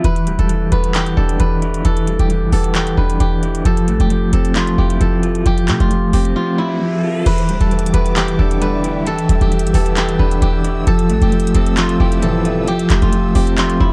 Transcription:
Already playing: E4 G4
0.04 E1 E3 B4, closed hi-hat
0.16 closed hi-hat
0.27 D1 G3, closed hi-hat
0.39 E1 A4, closed hi-hat
0.49 E3, closed hi-hat
0.72 E1 B3 B4, closed hi-hat
0.84 closed hi-hat
0.94 E3 G4, clap, closed hi-hat
1.06 closed hi-hat
1.17 E1 D4 A4
1.29 closed hi-hat
1.39 E1 E3 B4, closed hi-hat
1.62 E4, closed hi-hat
1.74 closed hi-hat
1.85 E1 E3 A4, closed hi-hat
1.97 closed hi-hat
2.07 G3, closed hi-hat
2.19 E1 G4, closed hi-hat
2.30 E3, closed hi-hat
2.42 G1
2.52 E1 B3 A4, open hi-hat
2.64 closed hi-hat
2.75 E3 G4, clap, closed hi-hat
2.87 closed hi-hat
2.97 E1 D4 B4
3.10 closed hi-hat
3.20 E1 E3 G4, closed hi-hat
3.43 E4, closed hi-hat
3.55 closed hi-hat
3.65 F1 F3 A4, closed hi-hat
3.77 closed hi-hat
3.88 A1 A3, closed hi-hat
4.00 F1 G4, closed hi-hat
4.10 F3, closed hi-hat
4.33 F1 C4 A4, closed hi-hat
4.45 closed hi-hat
4.56 F3 F4, clap, closed hi-hat
4.67 closed hi-hat
4.78 F1 E4 G4
4.90 closed hi-hat
5.00 F1 F3 A4, closed hi-hat
5.23 F4, closed hi-hat
5.35 closed hi-hat
5.46 F1 F3 G4, closed hi-hat, riser
5.58 closed hi-hat
5.68 C3 A3, clap, closed hi-hat
5.80 F1 F4, closed hi-hat
5.91 F3, closed hi-hat
6.13 F1 C4 G4, open hi-hat
6.25 closed hi-hat
6.36 F3 F4
6.58 E4
6.81 F3
7.03 F4
7.26 E1 E3 G4 B4 E5 D6, closed hi-hat, crash
7.38 closed hi-hat
7.49 D1 G3, closed hi-hat
7.61 E1 A4, closed hi-hat
7.71 E3, closed hi-hat
7.79 closed hi-hat
7.86 closed hi-hat
7.93 E1 B3 B4, closed hi-hat
8.06 closed hi-hat
8.16 E3 G4, clap, closed hi-hat
8.28 closed hi-hat
8.39 E1 D4 A4
8.51 closed hi-hat
8.61 D3 E3 G3 A3 B3 D4 B4, closed hi-hat
8.84 E4, closed hi-hat
9.06 E3 A4 E6, closed hi-hat
9.18 closed hi-hat
9.29 E1 G3, closed hi-hat
9.41 E1 G4, closed hi-hat
9.51 E3, closed hi-hat
9.59 closed hi-hat
9.64 G1, closed hi-hat
9.74 E1 B3 A4, open hi-hat
9.86 closed hi-hat
9.97 E3 G4, clap, closed hi-hat
10.09 closed hi-hat
10.19 E1 D4 B4
10.31 closed hi-hat
10.42 E1 E3 G4, closed hi-hat
10.64 E4, closed hi-hat
10.87 F1 F3 A4 E5, closed hi-hat
10.99 closed hi-hat
11.09 A1 A3, closed hi-hat
11.22 F1 G4, closed hi-hat
11.32 F3, closed hi-hat
11.40 closed hi-hat
11.47 closed hi-hat
11.54 F1 C4 A4, closed hi-hat
11.66 closed hi-hat
11.77 F3 F4, clap, closed hi-hat
11.89 closed hi-hat
12.00 F1 E4 G4
12.12 closed hi-hat
12.22 A2 C3 E3 F3 G3 B3 A4, closed hi-hat
12.45 F4, closed hi-hat
12.67 F3 G4, closed hi-hat
12.79 closed hi-hat
12.90 F1 A3, clap, closed hi-hat
13.02 F1 F4, closed hi-hat
13.13 F3, closed hi-hat
13.35 F1 C4 G4, open hi-hat
13.47 closed hi-hat
13.57 F3 F4, clap, closed hi-hat
13.70 closed hi-hat
13.80 F1 E4

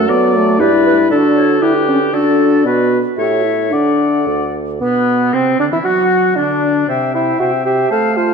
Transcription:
Already playing: A4
0.09 F#3 B3 D5
0.35 A3
0.60 G2 E4 G4 B4 D5
0.87 B4
1.10 D3 D4 F#4 A4 D5
1.35 C#5
1.61 D3 E4 G4 B4
1.88 C#4
2.13 D3 D4 F#4 A4 D5
2.65 B2 B3 F#4 B4
3.17 A2 G4 A4 C#5 E5
3.44 E4
3.71 D3 D4 A4 D5 F#5
4.27 D2
4.80 B2 B3 B4
5.33 C3 C4
5.58 D3 D4
5.72 E3 E4
5.84 F#3 F#4
6.36 D3 D4
6.87 C3 C5 E5 G5
7.14 E4 C5 E5 G5
7.40 C3 F#4 C5 E5 G5
7.65 G4 C5 E5 G5
7.90 A3 A4 C5 F5 A5
8.15 F4 C5 F5 A5

